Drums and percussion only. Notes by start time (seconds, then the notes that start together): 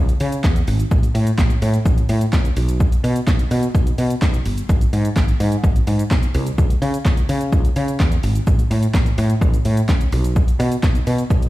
0.09 closed hi-hat, shaker
0.20 open hi-hat, shaker
0.32 closed hi-hat, shaker
0.44 kick, snare, clap, shaker
0.56 closed hi-hat, shaker
0.68 open hi-hat, shaker
0.80 closed hi-hat, shaker
0.91 kick, shaker
1.03 closed hi-hat, shaker
1.15 open hi-hat, shaker
1.27 closed hi-hat, shaker
1.38 kick, snare, clap, shaker
1.50 closed hi-hat, shaker
1.62 open hi-hat, shaker
1.74 closed hi-hat, shaker
1.86 kick, shaker
1.98 closed hi-hat, shaker
2.09 open hi-hat, shaker
2.21 closed hi-hat, shaker
2.33 kick, snare, clap, shaker
2.45 closed hi-hat, shaker
2.57 open hi-hat, shaker
2.69 closed hi-hat, shaker
2.80 kick, shaker
2.92 closed hi-hat, shaker
3.04 open hi-hat, shaker
3.16 closed hi-hat, shaker
3.27 kick, snare, clap, shaker
3.39 closed hi-hat, shaker
3.51 open hi-hat, shaker
3.63 closed hi-hat, shaker
3.75 kick, shaker
3.87 closed hi-hat, shaker
3.98 open hi-hat, shaker
4.10 closed hi-hat, shaker
4.22 kick, snare, clap, shaker
4.34 closed hi-hat, shaker
4.46 open hi-hat, shaker
4.58 closed hi-hat, shaker
4.69 kick, shaker
4.81 closed hi-hat, shaker
4.93 open hi-hat, shaker
5.05 closed hi-hat, shaker
5.16 kick, snare, clap, shaker
5.28 closed hi-hat, shaker
5.40 open hi-hat, shaker
5.52 closed hi-hat, shaker
5.64 kick, shaker
5.76 closed hi-hat, shaker
5.87 open hi-hat, shaker
5.99 closed hi-hat, shaker
6.11 kick, snare, clap, shaker
6.23 closed hi-hat, shaker
6.34 open hi-hat, shaker
6.47 closed hi-hat, shaker
6.58 kick, shaker
6.70 closed hi-hat, shaker
6.82 open hi-hat, shaker
6.94 closed hi-hat, shaker
7.05 kick, snare, clap, shaker
7.17 closed hi-hat, shaker
7.29 open hi-hat, shaker
7.41 closed hi-hat, shaker
7.52 kick, shaker
7.65 closed hi-hat, shaker
7.76 open hi-hat, shaker
7.88 closed hi-hat, shaker
8.00 kick, snare, clap, shaker
8.12 closed hi-hat, shaker
8.23 open hi-hat, shaker
8.35 closed hi-hat, shaker
8.47 kick, shaker
8.59 closed hi-hat, shaker
8.71 open hi-hat, shaker
8.83 closed hi-hat, shaker
8.94 kick, snare, clap, shaker
9.06 closed hi-hat, shaker
9.18 open hi-hat, shaker
9.30 closed hi-hat, shaker
9.41 kick, shaker
9.54 closed hi-hat, shaker
9.65 open hi-hat, shaker
9.77 closed hi-hat, shaker
9.89 kick, snare, clap, shaker
10.01 closed hi-hat, shaker
10.12 open hi-hat, shaker
10.24 closed hi-hat, shaker
10.36 kick, shaker
10.48 closed hi-hat, shaker
10.60 open hi-hat, shaker
10.72 closed hi-hat, shaker
10.83 kick, snare, clap, shaker
10.95 closed hi-hat, shaker
11.07 open hi-hat, shaker
11.18 closed hi-hat, shaker
11.30 kick, shaker
11.42 closed hi-hat, shaker